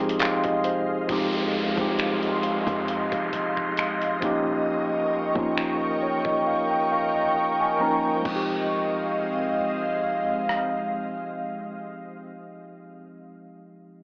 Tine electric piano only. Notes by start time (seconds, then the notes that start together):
Already playing: F3 G#3 C4 D#4 G4 G#4
0.20 F5
0.44 D#5
0.64 C5
0.89 G#4
1.07 F3 G#3 C4 D#4
1.12 G4
1.76 F3 G#3 C4 D#4
1.81 G4
4.20 F3 A#3 C#4 D#4
4.25 G4
5.34 F3 A#3 C#4 D#4
5.39 F4
6.02 C#5
6.26 D#5
6.47 F5
6.71 G5
6.92 F5
7.16 D#5
7.37 G5
7.61 G#5
7.79 F3 A#3 C#4 D#4 A#5
7.84 A#4
8.16 F3
8.21 G#3
8.26 C4
8.31 D#4
8.36 G4